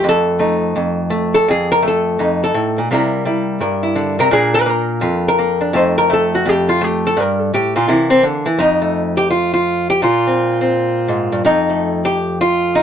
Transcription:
hollow-body jazz guitar
Already playing: A3 C4
0.04 F2
0.09 A4
0.39 A3 D#4
0.76 F2
1.10 A3
1.34 A4
1.48 F2 G#4
1.72 A#4
1.82 A3
1.88 A4
2.19 F2 D#4
2.44 A4
2.54 A2
2.78 A#2
2.91 C3 G3 A#3 E4 A#4
3.25 G3 E4
3.60 G2 A#4
3.83 E4
3.96 D3
4.19 C3 A#4
4.31 A#2 A#3 D4 G#4
4.54 B4
4.66 A#3 A#4
5.01 F2 F4
5.28 A#4
5.39 A#3
5.61 D4
5.73 F2 A3 D#4 C5
5.98 A#4
6.10 A3 A4
6.35 F#4
6.46 F2 G4
6.69 F4
6.81 A3 G4
7.07 A4
7.17 G2 A#4
7.40 A4
7.54 A2 G4
7.76 A#2 F4
7.88 C3 E3 A#3 E4
8.10 C4
8.23 D3
8.46 E3
8.59 F2 D#4
8.82 A3
9.17 G4
9.30 F4
9.54 F4
9.90 G4
10.02 A#2 F4
10.27 C4
10.61 C4
11.08 G#2
11.32 G2
11.45 F2 D#4
11.69 A3
12.05 G4
12.41 F4
12.75 D#4

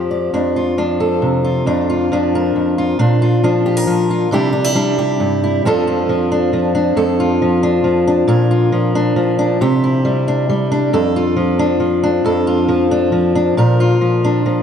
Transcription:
steel-string acoustic guitar
Already playing: F2 F3 G4 C5
0.11 D5
0.34 F2 D4
0.56 F4
0.78 F3 D4
1.00 A4
1.22 C3
1.44 F4
1.66 F2 D4
1.90 F4
2.12 F3 D4
2.35 A#4
2.56 F2
2.78 F4
2.99 A#2 D4
3.22 F4
3.44 F3 D4
3.66 G4
3.77 A#4
3.87 F3
4.11 F4
4.31 C3 G3 D4 E4 G4
4.53 D4
4.64 E4
4.75 G3 D4
4.99 G4
5.20 G2
5.44 E4
5.65 F2 F3 D4 F4 A4
5.87 F4
6.09 F3
6.32 D4
6.53 F3
6.75 D4
6.97 F2 A4
7.20 F4
7.42 F3
7.63 D4
7.84 F3
8.07 D4
8.28 A#2 A#4
8.51 F4
8.72 F3
8.95 D4
9.16 F3
9.39 D4
9.61 C3 G4
9.84 E4
10.05 G3
10.28 D4
10.49 G3
10.72 D4
10.93 F2 A4
11.16 F4
11.36 F3
11.59 D4
11.80 F3
12.03 D4
12.25 F2 A4
12.47 F4
12.69 F3
12.91 D4
13.12 F3
13.35 D4
13.57 A#2 A#4
13.80 F4
14.01 F3
14.24 D4
14.46 F3

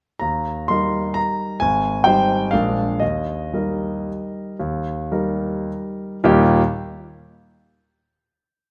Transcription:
grand piano
0.19 D#2 A#5
0.68 G3 D#4 A#4 C6
1.14 A#5
1.60 G#1 G#5
2.04 G3 D#4 C5 G5
2.51 A#1 G#3 D4 A#4 F5
3.00 D#2 D#5
3.53 G3 D#4 A#4
4.59 D#2
5.12 G3 D#4 A#4
6.24 D#2 A#2 G3 A#3 D#4 G4

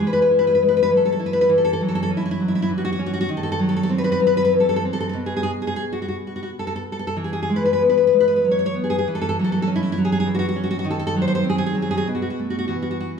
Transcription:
nylon-string guitar
Already playing: E3
0.00 G#3
0.07 B4
0.13 B4
0.22 B4
0.31 E4
0.39 B4
0.47 B4
0.55 B4
0.62 G#3
0.68 B4
0.77 B4
0.83 B4
0.91 F#3
0.97 A4
1.05 A4
1.12 A4
1.20 E4
1.26 B4
1.33 B4
1.41 B4
1.49 E3
1.58 A4
1.65 A4
1.73 A4
1.81 F#3
1.89 A4
1.95 A4
2.03 A4
2.10 C#4
2.17 E4
2.26 E4
2.31 E4
2.40 F#3
2.48 E4
2.55 E4
2.62 E4
2.69 E3
2.78 F#4
2.85 F#4
2.92 F#4
2.99 C#4
3.06 F#4
3.14 F#4
3.21 F#4
3.29 D#3
3.37 A4
3.43 A4
3.52 A4
3.59 F#3
3.69 A4
3.76 A4
3.83 A4
3.89 C4
3.98 B4
4.04 B4
4.12 B4
4.20 F#3
4.27 B4
4.37 B4
4.45 B4
4.53 E3
4.60 A4
4.69 A4
4.76 A4
4.85 C4
4.93 A4
5.00 A4
5.09 A4
5.13 B2
5.26 G#4
5.36 G#4
5.43 G#4
5.62 G#4
5.67 G#4
5.76 G#4
5.93 F#4
6.02 F#4
6.08 F#4
6.27 F#4
6.36 F#4
6.43 F#4
6.59 A4
6.67 A4
6.76 A4
6.92 A4
6.99 A4
7.07 A4
7.17 E3
7.24 G#4
7.33 G#4
7.43 G#4
7.50 G#3
7.56 B4
7.65 B4
7.73 B4
7.82 B3
7.89 B4
7.97 B4
8.07 B4
8.13 G#3
8.20 B4
8.28 B4
8.36 B4
8.45 F#3
8.51 C#5
8.59 C#5
8.66 C#5
8.75 B3
8.84 G#4
8.90 G#4
8.98 G#4
9.08 E3
9.15 A4
9.21 A4
9.29 A4
9.39 F#3
9.44 A4
9.52 A4
9.62 A4
9.67 C#4
9.76 E4
9.83 E4
9.92 E4
9.98 F#3
10.05 G#4
10.12 G#4
10.20 G#4
10.26 E3
10.35 F#4
10.39 F#4
10.49 F#4
10.56 C#4
10.64 F#4
10.71 F#4
10.79 F#4
10.84 D#3
10.91 A4
10.99 A4
11.07 A4
11.15 F#3
11.22 C5
11.28 C5
11.35 C5
11.44 C4
11.50 G#4
11.58 G#4
11.66 G#4
11.75 F#3
11.82 G#4
11.91 G#4
11.97 G#4
12.07 B2
12.15 F#4
12.22 F#4
12.30 F#4
12.40 A3
12.50 F#4
12.59 F#4
12.68 E3 F#4
12.82 F#4
12.91 F#4
13.00 F#4

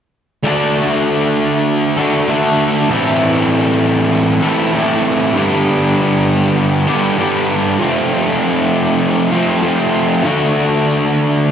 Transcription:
distorted electric guitar
0.44 D3 A3 D4 F#4 A4
1.97 D3 A3 D4 F#4 A4
2.28 D3 A3 D4 F#4 A4
2.88 A2 E3 A3 C4 E4 A4
4.42 A2 E3 A3 C4 E4 A4
4.73 A2 E3 A3 C4 E4 A4
5.34 G2 D3 G3 B3 D4
5.38 G4
6.87 G2 D3 G3 B3 D4 G4
7.17 G2 D3 G3 B3 D4 G4
7.78 F3 A3 C4 F4
9.32 F3 A3 C4 F4
9.62 F3 A3 C4 F4
10.23 D3 A3 D4 F#4

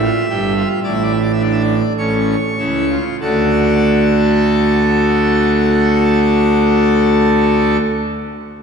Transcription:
pipe organ
Already playing: E5
0.03 F4
0.29 G1 G2 G4
0.56 F4
0.84 A1 A2 E4 D5
0.93 E5
1.03 D5
1.12 E5
1.22 D5
1.33 E5
1.39 D4 D5
1.52 E5
1.62 D5
1.98 A1 A2 C#4 C#5
2.58 C#2 C#3 E4
2.90 F4
3.21 D2 D3 A3 D4 F#4 A4

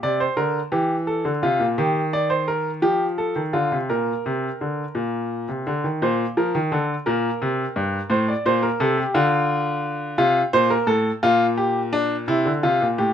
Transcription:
grand piano
0.03 C3 D5
0.20 C5
0.37 D3 A#4
0.72 E3 G4
1.07 A4
1.25 D3
1.43 C3 F4
1.60 A#2
1.78 D#3 G4
2.13 D5
2.30 C5
2.48 A#4
2.82 F3 G4
3.18 A4
3.36 D#3
3.53 D3 F4
3.72 C3
3.90 A#2 A#4
4.26 C3
4.61 D3
4.95 A#2
5.49 C3
5.67 D3
5.84 D#3
6.02 A#2 C5
6.37 F3 A#4
6.55 D#3
6.72 D3 A4
7.06 A#2 A#4
7.42 C3
7.76 G2
8.10 A2 C5
8.28 D5
8.46 A#2 C5
8.63 A#4
8.80 C3 A4
8.97 G4
9.14 D3 F4
10.18 C3 F4
10.53 A#2 C5
10.70 A#4
10.87 A2 A4
11.23 A#2 F4
11.58 G4
11.93 D4
12.28 C3 E4
12.45 D3
12.63 C3 F4
12.82 A#2
12.98 A2 G4

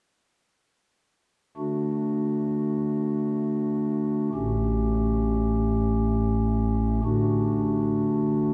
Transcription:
pipe organ
1.57 D3 A3 D4 F#4
4.34 A1 A2 A3 C#4 G4
7.04 D3 A3 D4 F#4

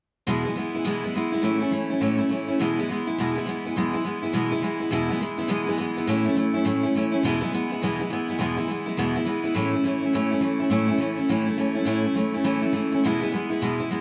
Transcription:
steel-string acoustic guitar
0.27 E2 B2 E3 G#3 B3 E4
0.45 E3 G#3 B3 E4
0.55 E3 G#3 B3 E4
0.74 E3 G#3 B3 E4
0.85 E2 B2 E3 G#3 B3 E4
1.03 E3 G#3 B3 E4
1.14 E3 G#3 B3 E4
1.32 E3 G#3 B3 E4
1.42 A2 E3 A3 C#4 E4
1.60 A3 C#4 E4
1.71 E3 A3 C#4 E4
1.90 A3 C#4 E4
2.01 A2 E3 A3 C#4 E4
2.18 A3 C#4 E4
2.29 E3 A3 C#4 E4
2.48 A3 C#4 E4
2.59 E2 B2 E3 G#3 B3 E4
2.79 E3 G#3 B3 E4
2.89 E3 G#3 B3 E4
3.07 E3 G#3 B3 E4
3.18 E2 B2 E3 G#3 B3 E4
3.35 E3 G#3 B3 E4
3.46 E3 G#3 B3 E4
3.65 E3 G#3 B3 E4
3.76 E2 B2 E3 G#3 B3 E4
3.94 E3 G#3 B3 E4
4.04 E3 G#3 B3 E4
4.23 E3 G#3 B3 E4
4.33 E2 B2 E3 G#3 B3 E4
4.51 E3 G#3 B3 E4
4.62 E3 G#3 B3 E4
4.80 E3 G#3 B3 E4
4.91 E2 B2 E3 G#3 B3 E4
5.09 E3 G#3 B3 E4
5.19 E3 G#3 B3 E4
5.38 E3 G#3 B3 E4
5.48 E2 B2 E3 G#3 B3 E4
5.67 E3 G#3 B3 E4
5.78 E3 G#3 B3 E4
5.97 E3 G#3 B3 E4
6.07 A2 E3 A3 C#4 E4
6.26 A3 C#4 E4
6.35 E3 A3 C#4 E4
6.54 A3 C#4 E4
6.65 A2 E3 A3 C#4 E4
6.83 A3 C#4 E4
6.95 E3 A3 C#4 E4
7.12 A3 C#4 E4
7.23 E2 B2 E3 G#3 B3 E4
7.41 E3 G#3 B3 E4
7.51 E3 G#3 B3 E4
7.71 E3 G#3 B3 E4
7.82 E2 B2 E3 G#3 B3 E4
7.99 E3 G#3 B3 E4
8.10 E3 G#3 B3 E4
8.28 E3 G#3 B3 E4
8.39 E2 B2 E3 G#3 B3 E4
8.57 E3 G#3 B3 E4
8.68 E3 G#3 B3 E4
8.86 E3 G#3 B3 E4
8.97 E2 B2 E3 G#3 B3 E4
9.16 E3 G#3 B3 E4
9.25 E3 G#3 B3 E4
9.44 E3 G#3 B3 E4
9.55 A2 E3 A3 C#4 E4
9.73 A3 C#4 E4
9.84 E3 A3 C#4 E4
10.02 A3 C#4 E4
10.13 A2 E3 A3 C#4 E4
10.31 A3 C#4 E4
10.41 E3 A3 C#4 E4
10.60 A3 C#4 E4
10.70 A2 E3 A3 C#4 E4
10.88 A3 C#4 E4
10.98 E3 A3 C#4 E4
11.18 A3 C#4 E4
11.29 A2 E3 A3 C#4 E4
11.46 A3 C#4 E4
11.58 E3 A3 C#4 E4
11.75 A3 C#4 E4
11.85 A2 E3 A3 C#4 E4
12.04 A3 C#4 E4
12.14 E3 A3 C#4 E4
12.34 A3 C#4 E4
12.44 A2 E3 A3 C#4 E4
12.62 A3 C#4 E4
12.73 E3 A3 C#4 E4
12.92 A3 C#4 E4
13.04 E2 B2 E3 G#3 B3 E4
13.21 E3 G#3 B3 E4
13.32 E3 G#3 B3 E4
13.50 E3 G#3 B3 E4
13.61 E2 B2 E3 G#3 B3 E4
13.80 E3 G#3 B3 E4
13.90 E3 G#3 B3 E4

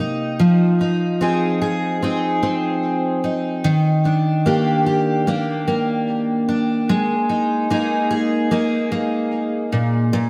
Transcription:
steel-string acoustic guitar
Already playing: C3 A#3 G4
0.00 D#4
0.39 F3
0.81 D#4
1.21 C4 D#4 G#4
1.62 G#4
2.02 C4 D#4 G#4
2.43 C4
3.24 D#4
3.64 D#3
4.05 D4
4.46 A#3 D4 G4
4.86 G4
5.27 A#3 D4 G4
5.68 A#3
6.49 D4
6.89 G#3
7.29 D#4
7.70 A#3 D#4 G#4
8.11 G#4
8.51 A#3 D#4 G#4
8.92 A#3
9.72 A#2
10.13 A#2

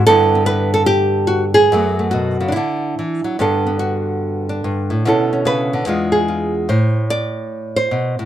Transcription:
nylon-string guitar
0.07 G2 D3 B3 E4 A4
0.35 B3
0.46 B4
0.74 A4
0.86 G4
1.27 F#4
1.54 G#4
1.72 F#2 F#3 A3 B3
1.99 A3
2.11 B2 F#4
2.40 C#3
2.48 D4 E4
2.56 D3 D4
2.99 E3
3.24 F#3
3.39 G2 D3 B3 D4 A4
3.66 B3
3.79 F#4
4.49 D4
4.64 G2
4.90 A2
5.05 B2 D3 C#4 E4 A4
5.33 C#4
5.45 C#3 B4
5.73 D3
5.86 E2 G#3 D4 F4
6.12 G#4
6.28 F4
6.69 A2 C5
7.10 D5
7.76 C5
7.91 B2
8.19 A2

